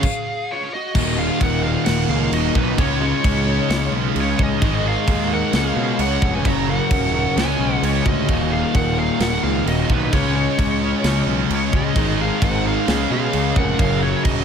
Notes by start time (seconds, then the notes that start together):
Already playing: G#4 F5
0.03 kick, crash
0.52 F4 C#5
0.74 F#4 D#5
0.95 D#1 D#2 A#2 D#3 A#3 F4, kick, crash
1.18 D#2 A#2 D#3 G#4 F5
1.41 D#1 D#2 A#2 D#3 A#4 F#5, kick, crash
1.63 D#2 A#2 D#3 G#4 F5
1.85 D#1 D#2 A#2 D#3 A#4 F#5, snare, crash
2.08 C#2 D#2 A#2 D#3 G#4 F5
2.32 D#1 D#2 A#2 D#3 F#4 D#5, crash
2.55 B1 D#2 A#2 D#3 D#4 B4, kick
2.78 C#2 C#3 G#3 C#4 D#4 F4 C#5, kick, crash
3.01 C#3 G#3 C#4 F4 C#5
3.23 C#2 C#3 G#3 C#4, kick, crash
3.45 C#3 G#3 C#4
3.69 C#2 C#3 G#3 C#4, snare, crash
3.92 B1 C#3 G#3 C#4
4.15 C#2 C#3 G#3 C#4, crash
4.21 F4 C#5
4.39 C#2 C#3 G#3 C#4 G#4, kick
4.43 D#5
4.62 G#1 G#2 D#3 G#3 D#4 A#4, kick, crash
4.83 G#2 D#3 G#3 G#4
4.88 F5
5.06 D#2 G#2 D#3 G#3, kick, crash
5.30 G#2 D#3 G#3 A#4 F#5
5.52 C#2 C#3 G#3 C#4 G#4 D#5 F#5, snare, crash
5.67 F5
5.75 B2 C#3 G#3 C#4
5.99 C#2 C#3 G#3 C#4 C#5 F#5, crash
6.22 F1 C#3 G#3 C#4, kick
6.35 B4 G#5
6.45 F#1 F#2 C#3 F#3 C#5 A#5, kick, crash
6.67 F#2 C#3 F#3 A#4 F#5
6.90 D#1 F#2 C#3 F#3, kick, crash
7.14 F#2 C#3 F#3
7.36 C#2 C#3 G#3 C#4 C#5 D#5 G#5, snare, crash
7.59 B1 C#3 G#3 C#4
7.82 C#2 C#3 G#3 C#4 F4 C#5, crash
8.06 D2 C#3 G#3 C#4 F#4 D#5, kick
8.28 D#1 D#2 A#2 D#3 D#4 A#4 F5, kick, crash
8.52 D#2 A#2 D#3 G#4 F5
8.74 D#1 D#2 A#2 D#3 A#4 F#5, kick, crash
8.97 D#2 A#2 D#3 G#4 F5
9.20 D#1 D#2 A#2 D#3 A#4 F#5, snare, crash
9.42 C#2 D#2 A#2 D#3 G#4 F5
9.66 D#1 D#2 A#2 D#3 F#4 D#5, crash
9.88 B1 D#2 A#2 D#3, kick
9.93 D#2 D#4 B4
10.10 C#2 C#3 G#3 C#4 G#4 C#5 D#5, kick, crash
10.15 F4
10.35 C#3 G#3 C#4 F4 C#5
10.58 C#2 C#3 G#3 C#4, kick, crash
10.82 C#3 G#3 C#4
11.04 C#2 C#3 G#3 C#4, snare, crash
11.26 B1 C#3 G#3 C#4
11.50 C#2 C#3 G#3 C#4 F4, crash
11.55 C#5
11.72 C#2 C#3 G#3 C#4 G#4 D#5, kick
11.95 G#1 G#2 D#3 G#3 D#4 A#4, kick, crash
12.20 G#2 D#3 G#3 G#4 F5
12.41 G#1 G#2 D#3 G#3 C5 F#5, kick, crash
12.65 G#2 D#3 G#3 G#4 F5
12.87 C#2 C#3 G#3 C#4 G#4 D#5, snare, crash
13.10 B2 C#3 G#3 C#4 G#4 F5
13.33 C#2 C#3 G#3 C#4, crash
13.56 F1 C#3 G#3 C#4 A#4 F#5, kick
13.79 F#1 F#2 C#3 F#3 G#4 A#4 F5, kick, crash
14.02 F#2 C#3 F#3 F4 C#5
14.24 D#1 F#2 C#3 F#3 F#4 D#5, kick, crash